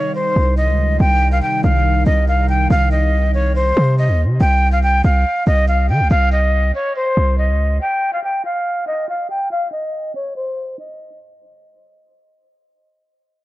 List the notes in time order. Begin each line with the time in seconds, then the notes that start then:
Already playing: C3 D#3 G3 D#4 C#5
0.15 C5
0.36 C2
0.57 D#5
0.68 C#2
1.00 C2 C3 D#3 G3 D#4 G5
1.32 F5
1.42 G5
1.64 C2 F5
2.06 C2 D#5
2.28 F5
2.49 G5
2.70 C2 F5
2.91 D#5
3.34 C#5
3.55 C5
3.77 C3
3.98 D#5
4.09 D#2
4.25 C3
4.41 C2 G5
4.72 F5
4.83 G5
5.04 C2 F5
5.47 C2 D#5
5.68 F5
5.89 D#3 G5
6.00 C2
6.11 C2 F5
6.32 D#5
6.75 C#5
6.96 C5
7.17 C2
7.38 D#5
7.49 C#2
7.81 G5
8.13 F5
8.24 G5
8.45 F5
8.87 D#5
9.09 F5
9.30 G5
9.51 F5
9.72 D#5
10.15 C#5
10.36 C5
10.79 D#5